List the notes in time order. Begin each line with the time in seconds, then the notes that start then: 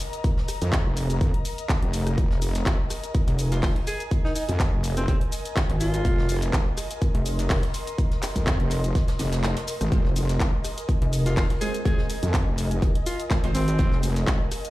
Already playing: A#4 D#5 A#5
0.00 closed hi-hat, open hi-hat, shaker
0.13 closed hi-hat, shaker
0.24 kick, closed hi-hat, shaker
0.37 snare
0.48 cross-stick, closed hi-hat, open hi-hat, shaker
0.62 F2, closed hi-hat, shaker
0.72 kick, snare, clap, closed hi-hat, shaker
0.86 F1
0.97 closed hi-hat, open hi-hat, shaker
1.10 closed hi-hat, shaker
1.21 F2, kick, closed hi-hat, shaker
1.34 closed hi-hat
1.45 closed hi-hat, open hi-hat, shaker
1.58 closed hi-hat, shaker
1.69 kick, snare, clap, closed hi-hat, shaker
1.83 F1, closed hi-hat
1.93 closed hi-hat, open hi-hat, shaker
2.07 cross-stick, closed hi-hat, shaker
2.18 F1, kick, closed hi-hat, shaker
2.31 snare
2.42 closed hi-hat, open hi-hat, shaker
2.48 G#5
2.55 snare, closed hi-hat, shaker
2.65 G#1, kick, snare, clap, closed hi-hat, shaker
2.90 cross-stick, closed hi-hat, open hi-hat, shaker
3.04 closed hi-hat, shaker
3.14 kick, closed hi-hat, shaker
3.27 F1, closed hi-hat
3.39 closed hi-hat, open hi-hat, shaker
3.51 F4, snare, closed hi-hat, shaker
3.63 F1 F4, kick, snare, clap, open hi-hat, shaker
3.76 closed hi-hat
3.87 G#4, closed hi-hat, open hi-hat, shaker
4.00 closed hi-hat, shaker
4.11 kick, closed hi-hat, shaker
4.25 D#4, snare
4.35 D#4, closed hi-hat, open hi-hat, shaker
4.48 F2, closed hi-hat, shaker
4.60 kick, snare, clap, closed hi-hat, shaker
4.73 F1
4.84 closed hi-hat, open hi-hat, shaker
4.97 C4, closed hi-hat, shaker
5.08 F1 C4, kick, closed hi-hat, shaker
5.21 closed hi-hat
5.32 closed hi-hat, open hi-hat, shaker
5.45 closed hi-hat, shaker
5.56 kick, snare, clap, closed hi-hat, shaker
5.70 G#1, closed hi-hat
5.79 F4, closed hi-hat, open hi-hat, shaker
5.94 closed hi-hat, shaker
6.05 F1, kick, closed hi-hat, shaker
6.18 snare
6.28 closed hi-hat, open hi-hat, shaker
6.35 C6
6.42 snare, closed hi-hat, shaker
6.53 G#1, kick, snare, clap, closed hi-hat, shaker
6.77 cross-stick, closed hi-hat, open hi-hat, shaker
6.91 closed hi-hat, shaker
7.01 kick, closed hi-hat, shaker
7.14 F1, closed hi-hat
7.26 closed hi-hat, open hi-hat, shaker
7.39 snare, closed hi-hat, shaker
7.50 F1, kick, snare, clap, open hi-hat, shaker
7.63 closed hi-hat
7.74 closed hi-hat, open hi-hat, shaker
7.87 closed hi-hat, shaker
7.98 kick, closed hi-hat, shaker
8.11 snare, closed hi-hat
8.23 cross-stick, clap, closed hi-hat, open hi-hat, shaker
8.35 F2, kick, closed hi-hat, shaker
8.46 kick, snare, clap, closed hi-hat, shaker
8.60 F1, closed hi-hat
8.70 closed hi-hat, open hi-hat, shaker
8.84 closed hi-hat, shaker
8.95 kick, snare, closed hi-hat, shaker
9.08 snare, closed hi-hat
9.19 F1, snare, closed hi-hat, open hi-hat, shaker
9.32 snare, closed hi-hat, shaker
9.43 snare, clap, closed hi-hat, shaker
9.56 snare, closed hi-hat
9.68 closed hi-hat, open hi-hat, shaker
9.81 G#1, cross-stick, closed hi-hat, shaker
9.92 F1 G#3 C4 F4 C5, kick, closed hi-hat, shaker
10.05 snare
10.16 closed hi-hat, open hi-hat, shaker
10.22 G#5
10.29 snare, closed hi-hat, shaker
10.40 G#1, kick, snare, clap, closed hi-hat, shaker
10.64 cross-stick, closed hi-hat, open hi-hat, shaker
10.78 closed hi-hat, shaker
10.88 kick, closed hi-hat, shaker
11.01 F1, closed hi-hat
11.13 closed hi-hat, open hi-hat, shaker
11.26 F4, snare, closed hi-hat, shaker
11.37 F1 F4, kick, snare, clap, open hi-hat, shaker
11.50 closed hi-hat
11.61 G#3 C4 F4 G#4 C5, closed hi-hat, open hi-hat, shaker
11.74 closed hi-hat, shaker
11.85 G#3 C4 F4 G#4 C5, kick, closed hi-hat, shaker
11.98 snare
12.10 closed hi-hat, open hi-hat, shaker
12.23 F2, closed hi-hat, shaker
12.33 kick, snare, clap, closed hi-hat, shaker
12.47 F1
12.58 closed hi-hat, open hi-hat, shaker
12.71 closed hi-hat, shaker
12.82 F1, kick, closed hi-hat, shaker
12.95 closed hi-hat
13.06 F4, closed hi-hat, open hi-hat, shaker
13.20 closed hi-hat, shaker
13.30 G#3 C4 F4 C5, kick, snare, clap, closed hi-hat, shaker
13.44 G#1 G#3 C4 F4 C5, closed hi-hat
13.55 C4, closed hi-hat, open hi-hat, shaker
13.68 closed hi-hat, shaker
13.78 F1 G#3 C4 F4 C5, kick, closed hi-hat, shaker
13.92 snare
14.02 closed hi-hat, open hi-hat, shaker
14.09 F5
14.16 snare, closed hi-hat, shaker
14.27 G#1, kick, snare, clap, closed hi-hat, shaker
14.52 cross-stick, closed hi-hat, open hi-hat, shaker
14.65 closed hi-hat, shaker